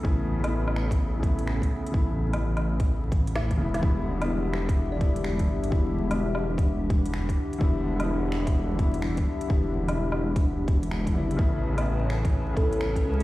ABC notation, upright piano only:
X:1
M:4/4
L:1/16
Q:"Swing 16ths" 1/4=127
K:Edor
V:1 name="Upright piano"
[C,A,B,E]3 [C,A,B,E]6- [C,A,B,E] [C,A,B,E]6 | [C,A,B,E]3 [C,A,B,E]8- [C,A,B,E]3 [C,A,B,E] z | [D,G,B,E]3 [D,G,B,E]6- [D,G,B,E] [D,G,B,E]6 | [D,G,B,E]3 [D,G,B,E]12- [D,G,B,E] |
[D,G,B,E]3 [D,G,B,E]6- [D,G,B,E] [D,G,B,E]6 | [D,G,B,E]3 [D,G,B,E]8- [D,G,B,E]3 [D,G,B,E] z | [C,A,B,E]3 [C,A,B,E]6- [C,A,B,E] [C,A,B,E]6 |]